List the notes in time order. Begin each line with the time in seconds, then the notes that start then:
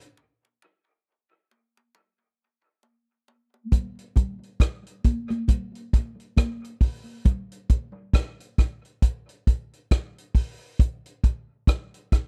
0.01 closed hi-hat
0.17 low conga
0.45 high conga
0.62 low conga
1.51 high conga
1.77 high conga
1.95 low conga
2.83 high conga
3.28 high conga
3.54 high conga
3.72 kick, closed hi-hat, low conga
3.99 closed hi-hat
4.16 kick, closed hi-hat, low conga
4.43 closed hi-hat
4.60 kick, cross-stick, closed hi-hat
4.87 closed hi-hat
5.04 kick, closed hi-hat, high conga
5.30 closed hi-hat, high conga
5.48 kick, closed hi-hat, low conga
5.75 closed hi-hat
5.93 kick, closed hi-hat
6.20 closed hi-hat
6.37 kick, cross-stick, closed hi-hat, high conga
6.64 closed hi-hat
6.81 kick, open hi-hat
7.25 kick, closed hi-hat, low conga
7.52 closed hi-hat
7.69 kick, closed hi-hat
8.13 kick, cross-stick, closed hi-hat
8.40 closed hi-hat
8.58 kick, cross-stick, closed hi-hat
8.85 closed hi-hat
9.02 kick, closed hi-hat
9.29 closed hi-hat
9.47 kick, closed hi-hat
9.73 closed hi-hat
9.91 kick, cross-stick, closed hi-hat
10.18 closed hi-hat
10.35 kick, open hi-hat
10.79 kick, closed hi-hat
11.06 closed hi-hat
11.24 kick, closed hi-hat
11.67 kick, cross-stick, closed hi-hat
11.94 closed hi-hat
12.12 kick, cross-stick, closed hi-hat